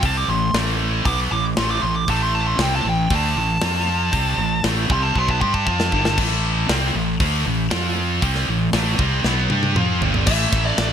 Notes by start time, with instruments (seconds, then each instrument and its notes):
0.03 fingered electric bass C2, distorted electric guitar C3 G3 C4, lead electric guitar A5, kick, open hi-hat
0.17 lead electric guitar D6
0.28 fingered electric bass A1, distorted electric guitar A2 E3, lead electric guitar C6
0.53 fingered electric bass A1, distorted electric guitar A2 E3 A3, snare, open hi-hat
1.05 fingered electric bass B1, distorted electric guitar B2 F#3 B3, lead electric guitar D6, kick, open hi-hat
1.31 fingered electric bass A1, distorted electric guitar A2 E3, lead electric guitar D6
1.57 fingered electric bass A1, distorted electric guitar A2 E3 A3, lead electric guitar C6, snare, open hi-hat
1.71 lead electric guitar D6
1.82 fingered electric bass A1, distorted electric guitar A2 E3, lead electric guitar C6
1.96 lead electric guitar D6
2.08 fingered electric bass A1, distorted electric guitar A2 E3 A3, lead electric guitar A5, kick, open hi-hat
2.22 lead electric guitar C6
2.35 lead electric guitar A5
2.47 lead electric guitar C6
2.58 fingered electric bass C2, distorted electric guitar C3 G3 C4, lead electric guitar G5, snare, open hi-hat
2.76 lead electric guitar A5
2.85 fingered electric bass A1, distorted electric guitar A2 E3
2.90 lead electric guitar G5
3.10 fingered electric bass D2, distorted electric guitar D3 A3 D4, kick, open hi-hat
3.15 lead electric guitar A5
3.36 fingered electric bass A1, distorted electric guitar A2 E3
3.61 fingered electric bass F2, distorted electric guitar F3 C4 F4, snare, open hi-hat
4.12 fingered electric bass C2, distorted electric guitar C3 G3 C4, kick, open hi-hat
4.38 fingered electric bass A1, distorted electric guitar A2 E3
4.64 fingered electric bass A1, distorted electric guitar A2 E3 A3, snare, open hi-hat
4.90 fingered electric bass C2, distorted electric guitar C3 G3 C4, lead electric guitar C6, kick
5.04 lead electric guitar A5
5.15 fingered electric bass B1, distorted electric guitar B2 F#3 B3, lead electric guitar C6, kick
5.28 lead electric guitar A5, kick
5.41 fingered electric bass G2, distorted electric guitar G3 D4 G4, lead electric guitar C6, kick
5.54 lead electric guitar A5, kick
5.66 fingered electric bass F2, distorted electric guitar F3 C4 F4, lead electric guitar A5, kick
5.80 snare
5.92 fingered electric bass G1, distorted electric guitar G2 D3 G3, kick
6.05 snare
6.18 fingered electric bass A1, distorted electric guitar A2 E3 A3, kick, crash
6.69 fingered electric bass C2, distorted electric guitar C3 G3 C4, snare, open hi-hat
6.95 fingered electric bass A1, distorted electric guitar A2 E3
7.20 fingered electric bass D2, distorted electric guitar D3 A3 D4, kick, open hi-hat
7.46 fingered electric bass A1, distorted electric guitar A2 E3
7.71 fingered electric bass F2, distorted electric guitar F3 C4 F4, snare, open hi-hat
8.22 fingered electric bass C2, distorted electric guitar C3 G3 C4, kick, open hi-hat
8.35 snare
8.49 fingered electric bass A1, distorted electric guitar A2 E3
8.73 fingered electric bass A1, distorted electric guitar A2 E3 A3, snare, open hi-hat
8.99 fingered electric bass C2, distorted electric guitar C3 G3 C4, kick
9.24 fingered electric bass B1, distorted electric guitar B2 F#3 B3, snare
9.50 fingered electric bass G2, distorted electric guitar G3 D4 G4, high tom
9.63 high tom
9.75 fingered electric bass F2, distorted electric guitar F3 C4 F4, mid tom
10.01 fingered electric bass G1, distorted electric guitar G2 D3 G3, floor tom
10.14 floor tom
10.27 fingered electric bass A1, distorted electric guitar A2 E3, lead electric guitar E5, kick, crash
10.31 distorted electric guitar A3
10.52 fingered electric bass A1, kick, snare, ride
10.66 lead electric guitar D5
10.78 fingered electric bass A1, snare, ride